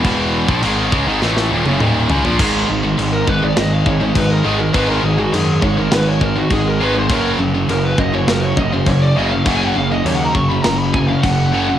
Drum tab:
CC |x---x-----------|x---x---x---x---|x---x---x---x---|x---x---x---x---|
SD |--------oo------|--------o-------|--------o-------|--------o-------|
T1 |-----------o----|----------------|----------------|----------------|
T2 |------------o---|----------------|----------------|----------------|
FT |--------------oo|----------------|----------------|----------------|
BD |o--o--o---------|o-----o---o-o---|o-----o---o-o---|o-----o---o-o---|

CC |x---x---x---x---|
SD |--------o-------|
T1 |----------------|
T2 |----------------|
FT |----------------|
BD |o-----o---o-o---|